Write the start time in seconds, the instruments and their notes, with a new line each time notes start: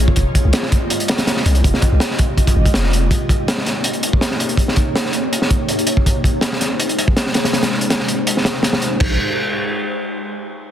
Already playing: 808-style bass A#1, ambient pad A#3 F4 G#4 C#5
0.08 kick
0.16 808-style bass F1, kick, closed hi-hat
0.35 kick, closed hi-hat
0.45 808-style bass C2
0.53 snare, closed hi-hat
0.63 snare
0.72 kick, closed hi-hat
0.90 closed hi-hat
1.00 closed hi-hat
1.08 snare, closed hi-hat
1.18 snare, closed hi-hat
1.27 snare, closed hi-hat
1.37 snare
1.46 808-style bass C2, closed hi-hat
1.55 closed hi-hat
1.64 808-style bass F1, kick, closed hi-hat
1.74 snare
1.82 kick, closed hi-hat
1.92 808-style bass C2
2.00 snare, closed hi-hat
2.11 snare
2.19 kick, closed hi-hat
2.38 kick, closed hi-hat
2.47 kick, closed hi-hat
2.56 808-style bass G#1
2.65 kick, closed hi-hat
2.74 808-style bass F1, snare, closed hi-hat
2.83 snare
2.93 closed hi-hat
3.11 kick, closed hi-hat
3.29 kick, closed hi-hat
3.48 snare, closed hi-hat
3.58 snare
3.66 snare, closed hi-hat
3.84 closed hi-hat
3.93 closed hi-hat
4.03 closed hi-hat
4.13 kick
4.21 snare, closed hi-hat
4.31 snare
4.40 closed hi-hat
4.49 closed hi-hat
4.57 kick, closed hi-hat
4.68 snare
4.76 kick, closed hi-hat
4.96 snare, closed hi-hat
5.05 snare
5.13 ambient pad A#3 D#4 G4 C#5, closed hi-hat
5.33 closed hi-hat
5.42 snare
5.51 kick, closed hi-hat
5.69 closed hi-hat
5.79 closed hi-hat
5.87 closed hi-hat
5.97 kick
6.06 kick, closed hi-hat
6.24 kick, closed hi-hat
6.41 snare, closed hi-hat
6.52 snare
6.61 snare, closed hi-hat
6.80 closed hi-hat
6.89 closed hi-hat
6.99 closed hi-hat
7.08 kick
7.17 snare, closed hi-hat
7.27 snare
7.34 snare, closed hi-hat
7.45 snare, closed hi-hat
7.53 snare, closed hi-hat
7.63 snare, closed hi-hat
7.71 snare
7.81 closed hi-hat
7.90 snare, closed hi-hat
8.00 snare
8.08 closed hi-hat
8.27 closed hi-hat
8.37 snare
8.45 snare, closed hi-hat
8.63 snare, closed hi-hat
8.73 snare
8.82 closed hi-hat
9.00 808-style bass A#1, kick, crash